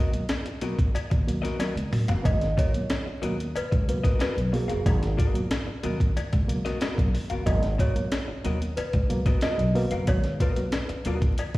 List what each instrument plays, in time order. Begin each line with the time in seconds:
Already playing: hollow-body jazz guitar F#4 A#4 D#5, celesta D#5
0.13 reed electric piano B2 F#3 A#3, muted upright bass stroke, closed hi-hat
0.29 reed electric piano G#2, snare, closed hi-hat, cowbell
0.46 muted hollow-body jazz guitar stroke, closed hi-hat
0.61 reed electric piano B2 F#3 A#3, hollow-body jazz guitar B3 F#4 A#4 D#5, closed hi-hat
0.78 reed electric piano F#3 A#3, muted hollow-body jazz guitar stroke, kick, closed hi-hat
0.94 reed electric piano G#2, muted hollow-body jazz guitar stroke, muted upright bass stroke, closed hi-hat, cowbell
1.10 upright bass D#2, muted hollow-body jazz guitar stroke, kick, closed hi-hat
1.27 reed electric piano B2 F#3 A#3, closed hi-hat
1.42 reed electric piano F#3 A#3, hollow-body jazz guitar B3 F#4 A#4 D#5, snare, closed hi-hat
1.59 reed electric piano F#3 A#3, hollow-body jazz guitar B3 F#4 A#4 D#5, muted upright bass stroke, snare, closed hi-hat, cowbell
1.76 upright bass C#2, reed electric piano G#2, closed hi-hat
1.91 reed electric piano F#3 A#3, muted hollow-body jazz guitar stroke, mid tom, open hi-hat
2.08 upright bass F#1, hollow-body jazz guitar B3 F#4 A#4 F5, closed hi-hat, floor tom
2.24 upright bass G#1, reed electric piano B2 F#3 A#3, celesta D#5, kick, closed hi-hat, cowbell
2.41 snare, closed hi-hat
2.57 reed electric piano G#2, hollow-body jazz guitar B3 F#4 A#4 D#5, celesta C#5, kick, closed hi-hat
2.73 reed electric piano B2 F#3 A#3, muted upright bass stroke, closed hi-hat
2.90 reed electric piano G#2, snare, closed hi-hat, cowbell
3.06 muted upright bass stroke, muted hollow-body jazz guitar stroke
3.22 upright bass D#2, reed electric piano B2 F#3 A#3, hollow-body jazz guitar B3 F#4 A#4 D#5, closed hi-hat
3.38 reed electric piano F#3 A#3, muted hollow-body jazz guitar stroke, closed hi-hat
3.55 reed electric piano G#2, celesta B4, muted hollow-body jazz guitar stroke, muted upright bass stroke, closed hi-hat, cowbell
3.72 upright bass C#2, muted hollow-body jazz guitar stroke, kick, closed hi-hat
3.88 reed electric piano B2 F#3 A#3, celesta B4, closed hi-hat
4.04 hollow-body jazz guitar B3 F#4 A#4 D#5, kick, snare, closed hi-hat
4.19 hollow-body jazz guitar B3 F#4 A#4 D#5, celesta B4, muted upright bass stroke, snare, closed hi-hat, cowbell
4.37 upright bass B1, closed hi-hat
4.52 reed electric piano B2 F#3 A#3, celesta G#4, muted hollow-body jazz guitar stroke, open hi-hat
4.68 upright bass F#1, hollow-body jazz guitar B3 F#4 A#4 F5, celesta G#4, closed hi-hat
4.86 upright bass G#1, reed electric piano B2 F#3 A#3, kick, closed hi-hat, cowbell
5.03 snare, closed hi-hat
5.17 reed electric piano G#2, hollow-body jazz guitar B3 F#4 A#4 D#5, kick, closed hi-hat
5.34 reed electric piano B2 F#3 A#3, muted upright bass stroke, closed hi-hat
5.51 reed electric piano G#2, snare, closed hi-hat, cowbell
5.67 muted hollow-body jazz guitar stroke, muted upright bass stroke
5.83 upright bass D#2, reed electric piano B2 F#3 A#3, hollow-body jazz guitar B3 F#4 A#4 D#5, closed hi-hat
6.00 reed electric piano F#3 A#3, kick, closed hi-hat
6.16 reed electric piano G#2, muted hollow-body jazz guitar stroke, muted upright bass stroke, closed hi-hat, cowbell
6.33 upright bass C#2, muted hollow-body jazz guitar stroke, kick, closed hi-hat
6.47 reed electric piano B2 F#3 A#3, closed hi-hat
6.65 reed electric piano F#3 A#3, hollow-body jazz guitar B3 F#4 A#4 D#5, snare, closed hi-hat
6.80 reed electric piano G#2, hollow-body jazz guitar B3 F#4 A#4 D#5, muted upright bass stroke, snare, closed hi-hat, cowbell
6.96 upright bass B1, reed electric piano B2 F#3 A#3, kick, closed hi-hat
7.13 reed electric piano F#3 A#3, muted hollow-body jazz guitar stroke, open hi-hat
7.30 upright bass F#1, hollow-body jazz guitar B3 F#4 A#4 F5, closed hi-hat
7.46 upright bass G#1, reed electric piano B2 F#3 A#3, celesta D#5, kick, closed hi-hat, cowbell
7.63 snare, closed hi-hat
7.78 reed electric piano G#2, hollow-body jazz guitar B3 F#4 A#4 D#5, celesta C#5, kick, closed hi-hat
7.95 reed electric piano B2 F#3 A#3, muted upright bass stroke, closed hi-hat
8.12 reed electric piano G#2, snare, closed hi-hat, cowbell
8.28 muted hollow-body jazz guitar stroke, muted upright bass stroke
8.44 upright bass D#2, reed electric piano B2 F#3 A#3, hollow-body jazz guitar B3 F#4 A#4 D#5, closed hi-hat
8.60 reed electric piano F#3 A#3, muted hollow-body jazz guitar stroke, closed hi-hat
8.77 reed electric piano G#2, celesta B4, muted upright bass stroke, muted hollow-body jazz guitar stroke, closed hi-hat, cowbell
8.93 upright bass C#2, muted hollow-body jazz guitar stroke, kick, closed hi-hat
9.09 reed electric piano B2 F#3 A#3, closed hi-hat
9.26 reed electric piano F#3 A#3, hollow-body jazz guitar B3 F#4 A#4 D#5, kick, snare, closed hi-hat
9.41 hollow-body jazz guitar B3 F#4 A#4 D#5, celesta D#5, muted upright bass stroke, snare, closed hi-hat, cowbell
9.58 upright bass B1, closed hi-hat
9.75 reed electric piano B2 F#3 A#3, celesta B4, muted hollow-body jazz guitar stroke, open hi-hat
9.91 upright bass F#1, hollow-body jazz guitar B3 F#4 A#4 F5, closed hi-hat
10.07 upright bass G#1, reed electric piano B2 F#3 A#3, celesta C#5, kick, closed hi-hat, cowbell
10.24 snare, closed hi-hat
10.40 reed electric piano G#2, hollow-body jazz guitar B3 F#4 A#4 D#5, celesta B4, kick, closed hi-hat
10.56 reed electric piano B2 F#3 A#3, muted upright bass stroke, closed hi-hat
10.72 reed electric piano G#2, snare, closed hi-hat, cowbell
10.89 muted upright bass stroke, muted hollow-body jazz guitar stroke, closed hi-hat
11.05 upright bass D#2, reed electric piano B2 F#3 A#3, hollow-body jazz guitar B3 F#4 A#4 D#5, closed hi-hat
11.22 reed electric piano F#3 A#3, muted hollow-body jazz guitar stroke, kick, closed hi-hat
11.38 reed electric piano G#2, muted hollow-body jazz guitar stroke, closed hi-hat, cowbell
11.54 upright bass C#2, muted hollow-body jazz guitar stroke, kick, closed hi-hat